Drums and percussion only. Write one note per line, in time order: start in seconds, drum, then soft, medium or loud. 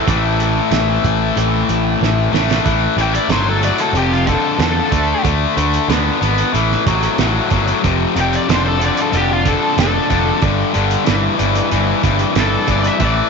0.08 kick loud
0.08 closed hi-hat medium
0.40 closed hi-hat medium
0.72 snare loud
0.72 closed hi-hat medium
1.05 kick medium
1.05 closed hi-hat medium
1.37 closed hi-hat medium
1.69 closed hi-hat medium
2.03 snare medium
2.34 snare medium
2.51 snare medium
2.66 kick loud
2.66 closed hi-hat medium
2.98 closed hi-hat medium
3.15 closed hi-hat medium
3.29 snare loud
3.29 closed hi-hat medium
3.63 closed hi-hat medium
3.78 closed hi-hat medium
3.95 closed hi-hat medium
4.12 snare soft
4.27 kick medium
4.27 closed hi-hat medium
4.60 snare loud
4.60 closed hi-hat medium
4.92 kick medium
4.92 closed hi-hat medium
5.25 kick loud
5.25 closed hi-hat medium
5.58 closed hi-hat medium
5.74 closed hi-hat medium
5.90 snare loud
5.90 closed hi-hat medium
6.22 closed hi-hat medium
6.38 closed hi-hat medium
6.55 closed hi-hat medium
6.71 snare soft
6.87 kick medium
6.87 closed hi-hat medium
7.03 closed hi-hat medium
7.18 snare loud
7.18 closed hi-hat medium
7.50 kick medium
7.50 closed hi-hat medium
7.68 closed hi-hat medium
7.84 kick loud
7.84 closed hi-hat medium
8.16 closed hi-hat medium
8.33 closed hi-hat medium
8.49 snare loud
8.49 closed hi-hat medium
8.81 closed hi-hat medium
8.97 closed hi-hat medium
9.13 closed hi-hat medium
9.45 kick medium
9.45 closed hi-hat medium
9.78 snare loud
9.78 closed hi-hat medium
10.10 kick medium
10.10 closed hi-hat medium
10.42 kick loud
10.42 closed hi-hat medium
10.74 closed hi-hat medium
10.91 closed hi-hat medium
11.06 snare loud
11.06 closed hi-hat medium
11.39 closed hi-hat medium
11.55 closed hi-hat medium
11.71 closed hi-hat medium
12.03 kick medium
12.03 closed hi-hat medium
12.19 closed hi-hat medium
12.35 snare loud
12.35 closed hi-hat medium
12.68 kick medium
12.68 closed hi-hat medium
12.84 closed hi-hat medium
13.00 kick loud
13.00 closed hi-hat medium